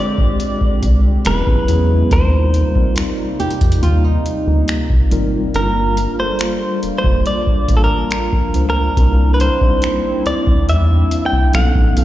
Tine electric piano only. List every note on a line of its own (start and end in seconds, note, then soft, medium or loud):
0.00 1.27 G#3 medium
0.00 1.27 C4 medium
0.00 1.27 D4 medium
0.00 1.27 F4 medium
0.00 1.28 G4 medium
1.25 1.60 F#3 medium
1.25 1.60 B3 medium
1.25 1.60 C#4 medium
1.25 1.60 E4 medium
1.25 1.60 G#4 medium
1.68 1.95 F#3 medium
1.68 1.95 B3 medium
1.68 1.96 C#4 medium
1.68 1.96 E4 medium
1.68 1.96 G#4 medium
2.11 2.52 G3 medium
2.11 2.52 C4 medium
2.11 2.52 D#4 medium
2.11 2.52 F4 medium
2.11 2.52 A#4 medium
2.75 3.84 G3 medium
2.75 3.84 C4 medium
2.75 3.84 D#4 medium
2.75 3.84 F4 medium
2.75 3.84 A#4 medium
5.11 5.38 G3 medium
5.11 5.38 C4 medium
5.11 5.38 D#4 medium
5.11 5.39 F4 medium
5.11 5.39 A#4 medium
5.54 5.95 G3 medium
5.54 5.95 A#3 medium
5.54 5.95 D4 medium
5.54 5.95 F4 medium
5.54 5.95 A#4 medium
6.18 7.26 G3 medium
6.18 7.27 A#3 medium
6.18 7.27 D4 medium
6.18 7.27 F4 medium
6.18 7.27 A4 medium
8.54 8.81 G3 medium
8.54 8.81 A#3 medium
8.54 8.81 D4 medium
8.54 8.82 F4 medium
8.54 8.82 C5 medium
8.97 9.37 G3 medium
8.97 9.38 C4 medium
8.97 9.38 D4 medium
8.97 9.38 E4 medium
8.97 9.38 A#4 medium
9.61 10.69 G3 medium
9.61 10.70 C4 medium
9.61 10.70 D4 medium
9.61 9.68 D#4 medium
9.61 10.70 C5 medium
9.69 10.73 E4 medium
11.54 11.88 F#3 medium
11.54 11.88 B3 medium
11.54 11.89 C#4 medium
11.54 11.89 D#4 medium
11.54 11.89 A4 medium
11.97 12.04 F#3 medium
11.97 12.04 B3 medium
11.97 12.04 C#4 medium
11.97 12.04 D#4 medium
11.97 12.04 A4 medium